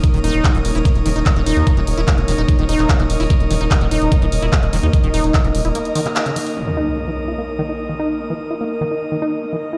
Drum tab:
HH |xxoxxxoxxxoxxxox|xxoxxxoxxxoxxxoo|xxoxxxoxxxoxxxox|xxoxxxoxxxoxxxoo|
CP |----x-------x---|----x------xx---|----x-------x---|----x------xx---|
BD |o---o---o---o---|o---o---o---o---|o---o---o---o---|o---o-----------|

HH |----------------|----------------|
CP |----------------|----------------|
BD |----------------|----------------|